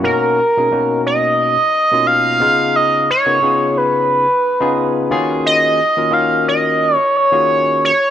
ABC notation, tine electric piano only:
X:1
M:4/4
L:1/16
Q:"Swing 16ths" 1/4=89
K:Blyd
V:1 name="Tine electric piano"
[B,,A,CDF]2 z [B,,A,CDG] [B,,A,CDF]4- [B,,A,CDF] z2 [B,,A,CDE]3 [C,B,DEG]2- | [C,B,DEG]2 z [C,B,DEA] [C,B,DEG]4- [C,B,DEG] z2 [C,B,DEG]3 [D,A,CEFG]2- | [D,A,CEFG]2 z [D,A,CEFA] [D,A,CEFA]4- [D,A,CEFA] z2 [D,A,CEFG]3 z2 |]